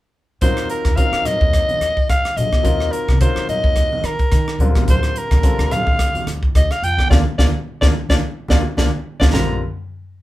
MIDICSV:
0, 0, Header, 1, 6, 480
1, 0, Start_track
1, 0, Tempo, 557621
1, 359, Time_signature, 4, 2, 24, 8
1, 8800, End_track
2, 0, Start_track
2, 0, Title_t, "Soprano saxophone"
2, 0, Program_c, 0, 64
2, 359, Note_on_c, 0, 72, 82
2, 583, Note_off_c, 0, 72, 0
2, 603, Note_on_c, 0, 70, 74
2, 832, Note_on_c, 0, 77, 90
2, 844, Note_off_c, 0, 70, 0
2, 1081, Note_on_c, 0, 75, 96
2, 1094, Note_off_c, 0, 77, 0
2, 1799, Note_off_c, 0, 75, 0
2, 1804, Note_on_c, 0, 77, 90
2, 2038, Note_on_c, 0, 75, 93
2, 2051, Note_off_c, 0, 77, 0
2, 2514, Note_on_c, 0, 70, 74
2, 2527, Note_off_c, 0, 75, 0
2, 2758, Note_off_c, 0, 70, 0
2, 2762, Note_on_c, 0, 72, 81
2, 2985, Note_off_c, 0, 72, 0
2, 3005, Note_on_c, 0, 75, 83
2, 3490, Note_on_c, 0, 70, 74
2, 3503, Note_off_c, 0, 75, 0
2, 3964, Note_off_c, 0, 70, 0
2, 4216, Note_on_c, 0, 72, 75
2, 4455, Note_on_c, 0, 70, 84
2, 4468, Note_off_c, 0, 72, 0
2, 4927, Note_on_c, 0, 77, 101
2, 4940, Note_off_c, 0, 70, 0
2, 5402, Note_off_c, 0, 77, 0
2, 5650, Note_on_c, 0, 75, 79
2, 5779, Note_on_c, 0, 77, 79
2, 5792, Note_off_c, 0, 75, 0
2, 5886, Note_on_c, 0, 79, 92
2, 5899, Note_off_c, 0, 77, 0
2, 6108, Note_off_c, 0, 79, 0
2, 6114, Note_on_c, 0, 74, 74
2, 6178, Note_off_c, 0, 74, 0
2, 6355, Note_on_c, 0, 74, 79
2, 6419, Note_off_c, 0, 74, 0
2, 6724, Note_on_c, 0, 74, 93
2, 6776, Note_off_c, 0, 74, 0
2, 6971, Note_on_c, 0, 74, 94
2, 7023, Note_off_c, 0, 74, 0
2, 7318, Note_on_c, 0, 74, 88
2, 7380, Note_off_c, 0, 74, 0
2, 7553, Note_on_c, 0, 74, 75
2, 7617, Note_off_c, 0, 74, 0
2, 7917, Note_on_c, 0, 74, 78
2, 7972, Note_off_c, 0, 74, 0
2, 8029, Note_on_c, 0, 82, 66
2, 8254, Note_off_c, 0, 82, 0
2, 8800, End_track
3, 0, Start_track
3, 0, Title_t, "Grand piano"
3, 0, Program_c, 1, 0
3, 362, Note_on_c, 1, 54, 66
3, 362, Note_on_c, 1, 63, 62
3, 364, Note_on_c, 1, 65, 59
3, 365, Note_on_c, 1, 60, 59
3, 371, Note_on_c, 1, 70, 69
3, 763, Note_off_c, 1, 54, 0
3, 763, Note_off_c, 1, 63, 0
3, 764, Note_off_c, 1, 65, 0
3, 765, Note_off_c, 1, 60, 0
3, 768, Note_off_c, 1, 70, 0
3, 836, Note_on_c, 1, 54, 61
3, 842, Note_on_c, 1, 60, 57
3, 842, Note_on_c, 1, 63, 57
3, 842, Note_on_c, 1, 70, 71
3, 845, Note_on_c, 1, 65, 56
3, 1631, Note_off_c, 1, 54, 0
3, 1634, Note_off_c, 1, 60, 0
3, 1634, Note_off_c, 1, 63, 0
3, 1634, Note_off_c, 1, 70, 0
3, 1635, Note_off_c, 1, 65, 0
3, 2269, Note_on_c, 1, 54, 69
3, 2271, Note_on_c, 1, 60, 65
3, 2272, Note_on_c, 1, 63, 64
3, 2275, Note_on_c, 1, 65, 65
3, 2275, Note_on_c, 1, 70, 79
3, 2677, Note_off_c, 1, 54, 0
3, 2678, Note_off_c, 1, 60, 0
3, 2678, Note_off_c, 1, 63, 0
3, 2680, Note_off_c, 1, 65, 0
3, 2680, Note_off_c, 1, 70, 0
3, 2759, Note_on_c, 1, 60, 55
3, 2762, Note_on_c, 1, 54, 64
3, 2763, Note_on_c, 1, 63, 58
3, 2765, Note_on_c, 1, 70, 67
3, 2768, Note_on_c, 1, 65, 55
3, 3551, Note_off_c, 1, 60, 0
3, 3553, Note_off_c, 1, 54, 0
3, 3553, Note_off_c, 1, 63, 0
3, 3554, Note_off_c, 1, 70, 0
3, 3556, Note_off_c, 1, 65, 0
3, 3959, Note_on_c, 1, 55, 55
3, 3961, Note_on_c, 1, 50, 66
3, 3962, Note_on_c, 1, 60, 59
3, 3962, Note_on_c, 1, 70, 73
3, 3965, Note_on_c, 1, 65, 62
3, 4559, Note_off_c, 1, 55, 0
3, 4560, Note_off_c, 1, 50, 0
3, 4560, Note_off_c, 1, 60, 0
3, 4560, Note_off_c, 1, 70, 0
3, 4561, Note_off_c, 1, 65, 0
3, 4675, Note_on_c, 1, 55, 56
3, 4676, Note_on_c, 1, 50, 65
3, 4676, Note_on_c, 1, 65, 59
3, 4678, Note_on_c, 1, 60, 60
3, 4679, Note_on_c, 1, 69, 68
3, 5467, Note_off_c, 1, 50, 0
3, 5467, Note_off_c, 1, 55, 0
3, 5468, Note_off_c, 1, 65, 0
3, 5469, Note_off_c, 1, 60, 0
3, 5469, Note_off_c, 1, 69, 0
3, 6116, Note_on_c, 1, 62, 86
3, 6121, Note_on_c, 1, 58, 84
3, 6122, Note_on_c, 1, 65, 87
3, 6201, Note_off_c, 1, 62, 0
3, 6203, Note_off_c, 1, 58, 0
3, 6205, Note_off_c, 1, 65, 0
3, 6361, Note_on_c, 1, 65, 85
3, 6364, Note_on_c, 1, 62, 78
3, 6366, Note_on_c, 1, 58, 79
3, 6444, Note_off_c, 1, 65, 0
3, 6445, Note_off_c, 1, 62, 0
3, 6447, Note_off_c, 1, 58, 0
3, 6740, Note_on_c, 1, 65, 81
3, 6742, Note_on_c, 1, 58, 91
3, 6742, Note_on_c, 1, 62, 84
3, 6804, Note_off_c, 1, 65, 0
3, 6805, Note_off_c, 1, 58, 0
3, 6805, Note_off_c, 1, 62, 0
3, 6978, Note_on_c, 1, 58, 82
3, 6980, Note_on_c, 1, 65, 82
3, 6982, Note_on_c, 1, 62, 89
3, 7042, Note_off_c, 1, 58, 0
3, 7043, Note_off_c, 1, 65, 0
3, 7045, Note_off_c, 1, 62, 0
3, 7330, Note_on_c, 1, 62, 81
3, 7331, Note_on_c, 1, 58, 83
3, 7334, Note_on_c, 1, 65, 88
3, 7409, Note_off_c, 1, 58, 0
3, 7409, Note_off_c, 1, 62, 0
3, 7411, Note_off_c, 1, 65, 0
3, 7554, Note_on_c, 1, 62, 82
3, 7556, Note_on_c, 1, 65, 73
3, 7557, Note_on_c, 1, 58, 79
3, 7639, Note_off_c, 1, 62, 0
3, 7640, Note_off_c, 1, 65, 0
3, 7641, Note_off_c, 1, 58, 0
3, 7928, Note_on_c, 1, 65, 86
3, 7932, Note_on_c, 1, 58, 81
3, 7933, Note_on_c, 1, 62, 85
3, 7996, Note_off_c, 1, 65, 0
3, 7998, Note_off_c, 1, 58, 0
3, 7999, Note_off_c, 1, 62, 0
3, 8039, Note_on_c, 1, 70, 77
3, 8040, Note_on_c, 1, 60, 66
3, 8041, Note_on_c, 1, 50, 74
3, 8041, Note_on_c, 1, 55, 71
3, 8041, Note_on_c, 1, 65, 67
3, 8260, Note_off_c, 1, 60, 0
3, 8260, Note_off_c, 1, 70, 0
3, 8261, Note_off_c, 1, 50, 0
3, 8261, Note_off_c, 1, 55, 0
3, 8261, Note_off_c, 1, 65, 0
3, 8800, End_track
4, 0, Start_track
4, 0, Title_t, "Upright bass"
4, 0, Program_c, 2, 32
4, 360, Note_on_c, 2, 39, 86
4, 558, Note_off_c, 2, 39, 0
4, 729, Note_on_c, 2, 39, 68
4, 819, Note_off_c, 2, 39, 0
4, 965, Note_on_c, 2, 39, 76
4, 1056, Note_off_c, 2, 39, 0
4, 1213, Note_on_c, 2, 39, 78
4, 1411, Note_off_c, 2, 39, 0
4, 1552, Note_on_c, 2, 39, 66
4, 1753, Note_off_c, 2, 39, 0
4, 1801, Note_on_c, 2, 39, 80
4, 1910, Note_off_c, 2, 39, 0
4, 2037, Note_on_c, 2, 34, 76
4, 2148, Note_off_c, 2, 34, 0
4, 2279, Note_on_c, 2, 39, 103
4, 2478, Note_off_c, 2, 39, 0
4, 2653, Note_on_c, 2, 36, 70
4, 2741, Note_off_c, 2, 36, 0
4, 2895, Note_on_c, 2, 51, 73
4, 2983, Note_off_c, 2, 51, 0
4, 3133, Note_on_c, 2, 39, 90
4, 3331, Note_off_c, 2, 39, 0
4, 3472, Note_on_c, 2, 51, 66
4, 3585, Note_off_c, 2, 51, 0
4, 3720, Note_on_c, 2, 51, 91
4, 3917, Note_off_c, 2, 51, 0
4, 3948, Note_on_c, 2, 38, 81
4, 4062, Note_off_c, 2, 38, 0
4, 4199, Note_on_c, 2, 38, 85
4, 4397, Note_off_c, 2, 38, 0
4, 4571, Note_on_c, 2, 38, 71
4, 4659, Note_off_c, 2, 38, 0
4, 4810, Note_on_c, 2, 38, 91
4, 4898, Note_off_c, 2, 38, 0
4, 5050, Note_on_c, 2, 38, 82
4, 5248, Note_off_c, 2, 38, 0
4, 5395, Note_on_c, 2, 38, 71
4, 5593, Note_off_c, 2, 38, 0
4, 5637, Note_on_c, 2, 38, 89
4, 5746, Note_off_c, 2, 38, 0
4, 5874, Note_on_c, 2, 41, 70
4, 5984, Note_off_c, 2, 41, 0
4, 6118, Note_on_c, 2, 38, 89
4, 6216, Note_off_c, 2, 38, 0
4, 6359, Note_on_c, 2, 38, 79
4, 6456, Note_off_c, 2, 38, 0
4, 6732, Note_on_c, 2, 38, 88
4, 6810, Note_off_c, 2, 38, 0
4, 6968, Note_on_c, 2, 38, 93
4, 7048, Note_off_c, 2, 38, 0
4, 7317, Note_on_c, 2, 38, 84
4, 7414, Note_off_c, 2, 38, 0
4, 7557, Note_on_c, 2, 38, 89
4, 7654, Note_off_c, 2, 38, 0
4, 7931, Note_on_c, 2, 38, 83
4, 8009, Note_off_c, 2, 38, 0
4, 8030, Note_on_c, 2, 34, 80
4, 8255, Note_off_c, 2, 34, 0
4, 8800, End_track
5, 0, Start_track
5, 0, Title_t, "Muted upright bass strokes"
5, 3004, Note_on_c, 9, 29, 36
5, 3090, Note_off_c, 9, 29, 0
5, 5286, Note_on_c, 9, 29, 33
5, 5372, Note_off_c, 9, 29, 0
5, 8800, End_track
6, 0, Start_track
6, 0, Title_t, "Drums"
6, 356, Note_on_c, 9, 42, 76
6, 360, Note_on_c, 9, 36, 81
6, 361, Note_on_c, 9, 64, 57
6, 442, Note_off_c, 9, 42, 0
6, 446, Note_off_c, 9, 36, 0
6, 447, Note_off_c, 9, 64, 0
6, 490, Note_on_c, 9, 37, 73
6, 490, Note_on_c, 9, 42, 36
6, 576, Note_off_c, 9, 37, 0
6, 576, Note_off_c, 9, 42, 0
6, 598, Note_on_c, 9, 42, 55
6, 684, Note_off_c, 9, 42, 0
6, 730, Note_on_c, 9, 37, 82
6, 730, Note_on_c, 9, 42, 34
6, 732, Note_on_c, 9, 63, 62
6, 733, Note_on_c, 9, 36, 81
6, 816, Note_off_c, 9, 37, 0
6, 816, Note_off_c, 9, 42, 0
6, 819, Note_off_c, 9, 36, 0
6, 819, Note_off_c, 9, 63, 0
6, 839, Note_on_c, 9, 42, 78
6, 841, Note_on_c, 9, 36, 100
6, 925, Note_off_c, 9, 42, 0
6, 927, Note_off_c, 9, 36, 0
6, 971, Note_on_c, 9, 37, 83
6, 971, Note_on_c, 9, 42, 38
6, 1057, Note_off_c, 9, 37, 0
6, 1057, Note_off_c, 9, 42, 0
6, 1078, Note_on_c, 9, 64, 59
6, 1080, Note_on_c, 9, 37, 72
6, 1080, Note_on_c, 9, 42, 59
6, 1164, Note_off_c, 9, 64, 0
6, 1166, Note_off_c, 9, 37, 0
6, 1166, Note_off_c, 9, 42, 0
6, 1214, Note_on_c, 9, 36, 80
6, 1300, Note_off_c, 9, 36, 0
6, 1321, Note_on_c, 9, 37, 72
6, 1321, Note_on_c, 9, 42, 74
6, 1323, Note_on_c, 9, 36, 72
6, 1407, Note_off_c, 9, 37, 0
6, 1407, Note_off_c, 9, 42, 0
6, 1409, Note_off_c, 9, 36, 0
6, 1454, Note_on_c, 9, 42, 33
6, 1454, Note_on_c, 9, 63, 60
6, 1540, Note_off_c, 9, 42, 0
6, 1540, Note_off_c, 9, 63, 0
6, 1560, Note_on_c, 9, 37, 70
6, 1560, Note_on_c, 9, 42, 54
6, 1646, Note_off_c, 9, 37, 0
6, 1646, Note_off_c, 9, 42, 0
6, 1695, Note_on_c, 9, 36, 73
6, 1782, Note_off_c, 9, 36, 0
6, 1803, Note_on_c, 9, 37, 67
6, 1803, Note_on_c, 9, 42, 73
6, 1804, Note_on_c, 9, 36, 89
6, 1889, Note_off_c, 9, 37, 0
6, 1889, Note_off_c, 9, 42, 0
6, 1890, Note_off_c, 9, 36, 0
6, 1939, Note_on_c, 9, 37, 73
6, 1939, Note_on_c, 9, 42, 37
6, 2025, Note_off_c, 9, 37, 0
6, 2025, Note_off_c, 9, 42, 0
6, 2044, Note_on_c, 9, 42, 61
6, 2046, Note_on_c, 9, 64, 62
6, 2130, Note_off_c, 9, 42, 0
6, 2132, Note_off_c, 9, 64, 0
6, 2174, Note_on_c, 9, 37, 77
6, 2175, Note_on_c, 9, 36, 85
6, 2176, Note_on_c, 9, 63, 66
6, 2260, Note_off_c, 9, 37, 0
6, 2261, Note_off_c, 9, 36, 0
6, 2262, Note_off_c, 9, 63, 0
6, 2278, Note_on_c, 9, 42, 82
6, 2281, Note_on_c, 9, 36, 80
6, 2287, Note_on_c, 9, 64, 57
6, 2364, Note_off_c, 9, 42, 0
6, 2367, Note_off_c, 9, 36, 0
6, 2373, Note_off_c, 9, 64, 0
6, 2414, Note_on_c, 9, 37, 70
6, 2500, Note_off_c, 9, 37, 0
6, 2521, Note_on_c, 9, 42, 54
6, 2607, Note_off_c, 9, 42, 0
6, 2655, Note_on_c, 9, 36, 82
6, 2657, Note_on_c, 9, 63, 71
6, 2658, Note_on_c, 9, 37, 78
6, 2741, Note_off_c, 9, 36, 0
6, 2743, Note_off_c, 9, 63, 0
6, 2744, Note_off_c, 9, 37, 0
6, 2760, Note_on_c, 9, 42, 79
6, 2762, Note_on_c, 9, 36, 106
6, 2846, Note_off_c, 9, 42, 0
6, 2848, Note_off_c, 9, 36, 0
6, 2893, Note_on_c, 9, 37, 82
6, 2979, Note_off_c, 9, 37, 0
6, 3003, Note_on_c, 9, 42, 50
6, 3004, Note_on_c, 9, 64, 57
6, 3089, Note_off_c, 9, 42, 0
6, 3090, Note_off_c, 9, 64, 0
6, 3132, Note_on_c, 9, 36, 79
6, 3218, Note_off_c, 9, 36, 0
6, 3234, Note_on_c, 9, 37, 67
6, 3234, Note_on_c, 9, 42, 71
6, 3239, Note_on_c, 9, 36, 78
6, 3320, Note_off_c, 9, 37, 0
6, 3320, Note_off_c, 9, 42, 0
6, 3325, Note_off_c, 9, 36, 0
6, 3382, Note_on_c, 9, 63, 70
6, 3468, Note_off_c, 9, 63, 0
6, 3475, Note_on_c, 9, 37, 70
6, 3475, Note_on_c, 9, 42, 50
6, 3561, Note_off_c, 9, 37, 0
6, 3561, Note_off_c, 9, 42, 0
6, 3606, Note_on_c, 9, 42, 32
6, 3611, Note_on_c, 9, 36, 81
6, 3692, Note_off_c, 9, 42, 0
6, 3697, Note_off_c, 9, 36, 0
6, 3715, Note_on_c, 9, 37, 68
6, 3715, Note_on_c, 9, 42, 63
6, 3719, Note_on_c, 9, 36, 87
6, 3801, Note_off_c, 9, 37, 0
6, 3801, Note_off_c, 9, 42, 0
6, 3806, Note_off_c, 9, 36, 0
6, 3855, Note_on_c, 9, 37, 76
6, 3941, Note_off_c, 9, 37, 0
6, 3960, Note_on_c, 9, 42, 47
6, 3964, Note_on_c, 9, 64, 66
6, 4046, Note_off_c, 9, 42, 0
6, 4050, Note_off_c, 9, 64, 0
6, 4092, Note_on_c, 9, 37, 77
6, 4092, Note_on_c, 9, 42, 32
6, 4093, Note_on_c, 9, 36, 78
6, 4096, Note_on_c, 9, 63, 76
6, 4178, Note_off_c, 9, 37, 0
6, 4178, Note_off_c, 9, 42, 0
6, 4179, Note_off_c, 9, 36, 0
6, 4182, Note_off_c, 9, 63, 0
6, 4199, Note_on_c, 9, 42, 80
6, 4200, Note_on_c, 9, 36, 79
6, 4202, Note_on_c, 9, 64, 67
6, 4285, Note_off_c, 9, 42, 0
6, 4286, Note_off_c, 9, 36, 0
6, 4289, Note_off_c, 9, 64, 0
6, 4330, Note_on_c, 9, 37, 73
6, 4330, Note_on_c, 9, 42, 37
6, 4416, Note_off_c, 9, 37, 0
6, 4416, Note_off_c, 9, 42, 0
6, 4440, Note_on_c, 9, 42, 54
6, 4526, Note_off_c, 9, 42, 0
6, 4571, Note_on_c, 9, 37, 79
6, 4571, Note_on_c, 9, 42, 37
6, 4572, Note_on_c, 9, 36, 75
6, 4574, Note_on_c, 9, 63, 75
6, 4657, Note_off_c, 9, 37, 0
6, 4657, Note_off_c, 9, 42, 0
6, 4658, Note_off_c, 9, 36, 0
6, 4660, Note_off_c, 9, 63, 0
6, 4677, Note_on_c, 9, 42, 78
6, 4679, Note_on_c, 9, 36, 104
6, 4763, Note_off_c, 9, 42, 0
6, 4765, Note_off_c, 9, 36, 0
6, 4814, Note_on_c, 9, 37, 83
6, 4814, Note_on_c, 9, 42, 36
6, 4900, Note_off_c, 9, 37, 0
6, 4900, Note_off_c, 9, 42, 0
6, 4915, Note_on_c, 9, 64, 70
6, 4919, Note_on_c, 9, 37, 69
6, 4919, Note_on_c, 9, 42, 54
6, 5001, Note_off_c, 9, 64, 0
6, 5005, Note_off_c, 9, 37, 0
6, 5005, Note_off_c, 9, 42, 0
6, 5051, Note_on_c, 9, 36, 74
6, 5137, Note_off_c, 9, 36, 0
6, 5158, Note_on_c, 9, 36, 67
6, 5158, Note_on_c, 9, 37, 83
6, 5158, Note_on_c, 9, 42, 74
6, 5244, Note_off_c, 9, 36, 0
6, 5244, Note_off_c, 9, 37, 0
6, 5244, Note_off_c, 9, 42, 0
6, 5289, Note_on_c, 9, 63, 69
6, 5295, Note_on_c, 9, 42, 34
6, 5375, Note_off_c, 9, 63, 0
6, 5381, Note_off_c, 9, 42, 0
6, 5399, Note_on_c, 9, 37, 75
6, 5399, Note_on_c, 9, 42, 55
6, 5485, Note_off_c, 9, 37, 0
6, 5485, Note_off_c, 9, 42, 0
6, 5532, Note_on_c, 9, 36, 71
6, 5618, Note_off_c, 9, 36, 0
6, 5640, Note_on_c, 9, 36, 92
6, 5642, Note_on_c, 9, 37, 77
6, 5642, Note_on_c, 9, 42, 81
6, 5726, Note_off_c, 9, 36, 0
6, 5728, Note_off_c, 9, 37, 0
6, 5728, Note_off_c, 9, 42, 0
6, 5775, Note_on_c, 9, 37, 71
6, 5775, Note_on_c, 9, 42, 36
6, 5861, Note_off_c, 9, 37, 0
6, 5861, Note_off_c, 9, 42, 0
6, 5884, Note_on_c, 9, 42, 64
6, 5970, Note_off_c, 9, 42, 0
6, 6004, Note_on_c, 9, 63, 68
6, 6013, Note_on_c, 9, 36, 76
6, 6018, Note_on_c, 9, 37, 77
6, 6090, Note_off_c, 9, 63, 0
6, 6099, Note_off_c, 9, 36, 0
6, 6104, Note_off_c, 9, 37, 0
6, 6114, Note_on_c, 9, 63, 92
6, 6120, Note_on_c, 9, 36, 84
6, 6125, Note_on_c, 9, 38, 82
6, 6200, Note_off_c, 9, 63, 0
6, 6206, Note_off_c, 9, 36, 0
6, 6211, Note_off_c, 9, 38, 0
6, 6359, Note_on_c, 9, 36, 87
6, 6361, Note_on_c, 9, 63, 82
6, 6362, Note_on_c, 9, 38, 81
6, 6445, Note_off_c, 9, 36, 0
6, 6447, Note_off_c, 9, 63, 0
6, 6448, Note_off_c, 9, 38, 0
6, 6726, Note_on_c, 9, 63, 96
6, 6731, Note_on_c, 9, 36, 82
6, 6732, Note_on_c, 9, 38, 84
6, 6812, Note_off_c, 9, 63, 0
6, 6818, Note_off_c, 9, 36, 0
6, 6818, Note_off_c, 9, 38, 0
6, 6963, Note_on_c, 9, 63, 81
6, 6970, Note_on_c, 9, 36, 83
6, 6971, Note_on_c, 9, 38, 82
6, 7049, Note_off_c, 9, 63, 0
6, 7056, Note_off_c, 9, 36, 0
6, 7057, Note_off_c, 9, 38, 0
6, 7303, Note_on_c, 9, 63, 104
6, 7317, Note_on_c, 9, 38, 79
6, 7318, Note_on_c, 9, 36, 78
6, 7389, Note_off_c, 9, 63, 0
6, 7403, Note_off_c, 9, 38, 0
6, 7404, Note_off_c, 9, 36, 0
6, 7549, Note_on_c, 9, 63, 85
6, 7558, Note_on_c, 9, 36, 86
6, 7558, Note_on_c, 9, 38, 81
6, 7635, Note_off_c, 9, 63, 0
6, 7644, Note_off_c, 9, 36, 0
6, 7644, Note_off_c, 9, 38, 0
6, 7917, Note_on_c, 9, 63, 91
6, 7931, Note_on_c, 9, 36, 91
6, 7933, Note_on_c, 9, 38, 88
6, 8003, Note_off_c, 9, 63, 0
6, 8017, Note_off_c, 9, 36, 0
6, 8019, Note_off_c, 9, 38, 0
6, 8030, Note_on_c, 9, 63, 72
6, 8038, Note_on_c, 9, 38, 96
6, 8038, Note_on_c, 9, 43, 85
6, 8116, Note_off_c, 9, 63, 0
6, 8124, Note_off_c, 9, 38, 0
6, 8124, Note_off_c, 9, 43, 0
6, 8800, End_track
0, 0, End_of_file